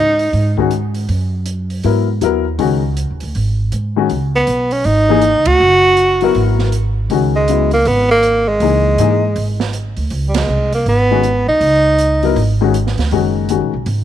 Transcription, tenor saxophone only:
0, 0, Header, 1, 2, 480
1, 0, Start_track
1, 0, Tempo, 375940
1, 1393, Time_signature, 4, 2, 24, 8
1, 17928, End_track
2, 0, Start_track
2, 0, Title_t, "Tenor saxophone"
2, 0, Program_c, 0, 66
2, 0, Note_on_c, 0, 63, 96
2, 764, Note_off_c, 0, 63, 0
2, 5562, Note_on_c, 0, 59, 80
2, 6032, Note_on_c, 0, 61, 78
2, 6052, Note_off_c, 0, 59, 0
2, 6199, Note_on_c, 0, 63, 95
2, 6218, Note_off_c, 0, 61, 0
2, 6982, Note_on_c, 0, 66, 107
2, 7001, Note_off_c, 0, 63, 0
2, 8421, Note_off_c, 0, 66, 0
2, 9396, Note_on_c, 0, 56, 80
2, 9835, Note_off_c, 0, 56, 0
2, 9872, Note_on_c, 0, 58, 90
2, 10054, Note_on_c, 0, 59, 94
2, 10073, Note_off_c, 0, 58, 0
2, 10348, Note_off_c, 0, 59, 0
2, 10359, Note_on_c, 0, 58, 100
2, 10829, Note_on_c, 0, 56, 85
2, 10848, Note_off_c, 0, 58, 0
2, 12440, Note_off_c, 0, 56, 0
2, 13133, Note_on_c, 0, 55, 52
2, 13240, Note_on_c, 0, 56, 80
2, 13259, Note_off_c, 0, 55, 0
2, 13709, Note_off_c, 0, 56, 0
2, 13717, Note_on_c, 0, 58, 69
2, 13872, Note_off_c, 0, 58, 0
2, 13897, Note_on_c, 0, 59, 91
2, 14617, Note_off_c, 0, 59, 0
2, 14662, Note_on_c, 0, 63, 97
2, 16047, Note_off_c, 0, 63, 0
2, 17928, End_track
0, 0, End_of_file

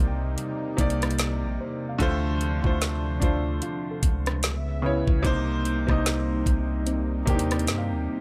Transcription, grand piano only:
0, 0, Header, 1, 2, 480
1, 0, Start_track
1, 0, Tempo, 810811
1, 1185, Time_signature, 4, 2, 24, 8
1, 4858, End_track
2, 0, Start_track
2, 0, Title_t, "Grand piano"
2, 0, Program_c, 0, 0
2, 0, Control_c, 0, 64, 127
2, 0, Note_on_c, 0, 48, 87
2, 0, Note_on_c, 0, 58, 77
2, 0, Note_on_c, 0, 63, 78
2, 0, Note_on_c, 0, 72, 125
2, 0, Note_on_c, 0, 74, 98
2, 413, Note_off_c, 0, 48, 0
2, 417, Note_off_c, 0, 58, 0
2, 420, Note_off_c, 0, 63, 0
2, 425, Note_off_c, 0, 74, 0
2, 454, Note_on_c, 0, 48, 93
2, 462, Note_on_c, 0, 58, 85
2, 470, Note_on_c, 0, 63, 81
2, 478, Note_on_c, 0, 74, 105
2, 1139, Note_off_c, 0, 48, 0
2, 1143, Note_off_c, 0, 58, 0
2, 1147, Note_off_c, 0, 63, 0
2, 1151, Note_off_c, 0, 74, 0
2, 1175, Note_on_c, 0, 50, 118
2, 1181, Note_on_c, 0, 57, 103
2, 1189, Note_on_c, 0, 65, 108
2, 1194, Control_c, 0, 64, 0
2, 1197, Note_off_c, 0, 72, 0
2, 1197, Note_on_c, 0, 72, 127
2, 1300, Control_c, 0, 64, 127
2, 1532, Note_off_c, 0, 50, 0
2, 1535, Note_off_c, 0, 57, 0
2, 1539, Note_off_c, 0, 65, 0
2, 1543, Note_off_c, 0, 72, 0
2, 1553, Note_on_c, 0, 50, 84
2, 1561, Note_on_c, 0, 57, 78
2, 1568, Note_on_c, 0, 65, 82
2, 1576, Note_on_c, 0, 72, 96
2, 1879, Note_off_c, 0, 50, 0
2, 1883, Note_off_c, 0, 57, 0
2, 1887, Note_off_c, 0, 65, 0
2, 1891, Note_off_c, 0, 72, 0
2, 1893, Note_on_c, 0, 62, 78
2, 1901, Note_on_c, 0, 57, 73
2, 1908, Note_on_c, 0, 65, 78
2, 1916, Note_on_c, 0, 72, 88
2, 2619, Note_off_c, 0, 62, 0
2, 2623, Note_off_c, 0, 57, 0
2, 2627, Note_off_c, 0, 65, 0
2, 2631, Note_off_c, 0, 72, 0
2, 2633, Control_c, 0, 64, 0
2, 2750, Control_c, 0, 64, 127
2, 2855, Note_on_c, 0, 49, 87
2, 2861, Note_on_c, 0, 59, 76
2, 2870, Note_on_c, 0, 64, 76
2, 2878, Note_on_c, 0, 73, 91
2, 3087, Note_off_c, 0, 49, 0
2, 3090, Note_off_c, 0, 59, 0
2, 3093, Note_on_c, 0, 48, 114
2, 3094, Note_off_c, 0, 64, 0
2, 3098, Note_off_c, 0, 73, 0
2, 3101, Note_on_c, 0, 58, 101
2, 3109, Note_on_c, 0, 63, 100
2, 3113, Control_c, 0, 64, 0
2, 3116, Note_on_c, 0, 72, 127
2, 3215, Control_c, 0, 64, 127
2, 3451, Note_off_c, 0, 48, 0
2, 3455, Note_off_c, 0, 58, 0
2, 3458, Note_off_c, 0, 63, 0
2, 3462, Note_off_c, 0, 72, 0
2, 3474, Note_on_c, 0, 48, 90
2, 3482, Note_on_c, 0, 58, 84
2, 3490, Note_on_c, 0, 63, 82
2, 3497, Note_on_c, 0, 75, 95
2, 4253, Note_off_c, 0, 48, 0
2, 4257, Note_off_c, 0, 58, 0
2, 4261, Note_off_c, 0, 63, 0
2, 4265, Note_off_c, 0, 75, 0
2, 4295, Note_on_c, 0, 48, 94
2, 4302, Note_on_c, 0, 58, 83
2, 4311, Note_on_c, 0, 62, 65
2, 4319, Note_on_c, 0, 67, 103
2, 4349, Note_on_c, 0, 63, 83
2, 4353, Note_off_c, 0, 62, 0
2, 4858, Note_off_c, 0, 48, 0
2, 4858, Note_off_c, 0, 58, 0
2, 4858, Note_off_c, 0, 63, 0
2, 4858, Note_off_c, 0, 67, 0
2, 4858, End_track
0, 0, End_of_file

